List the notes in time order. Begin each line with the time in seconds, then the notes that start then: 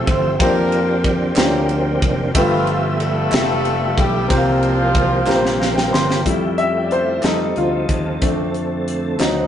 Already playing: F3 A3 C4 E4 F4 G4 A4 C5 E5
0.07 G1 C4 C5, kick, ride
0.39 F2 F3 A#3 C4 D4 F4 G4 A#4 C5, kick, ride
0.46 D4
0.72 ride
1.04 kick, ride
1.36 D2 A#3 C#4 F4 G4 C5, snare, clap, ride
1.44 D4
1.69 ride
2.02 F1, kick, ride
2.34 G1 G2 F3 A3 B3 F4 G4 B4 E5, kick, ride
2.67 ride
3.00 A3 D4 F4 A4, ride
3.31 F1 A3 F4 G4 A4 E5, snare, clap, ride
3.65 ride
3.97 B1 G3 G4, kick, ride
4.28 C2 C3 F3 G3 A#3 C4 F4 G4 C5, kick, ride
4.63 ride
4.95 kick, ride
5.26 A#1 A#3 C4 F4 G4 A#4, snare, clap
5.36 C5
5.46 snare
5.60 F5, snare
5.76 G5, snare
5.93 G1 C6, snare
6.11 snare
6.25 F2 F3 G3 A3 E4 G4, kick, closed hi-hat
6.58 E5, closed hi-hat
6.84 D5
6.91 C5, closed hi-hat
7.23 F2 F3 G3 A3 C4 D#4 G4 A4, snare, clap, closed hi-hat
7.30 A4
7.56 D2 F4, closed hi-hat
7.89 D#2, kick, closed hi-hat
8.21 F2 D3 A3 C4 D4 A4, kick, closed hi-hat
8.54 closed hi-hat
8.88 closed hi-hat
9.19 D2 D3 D#3 F#3 C4 D#4 F#4, snare, clap, closed hi-hat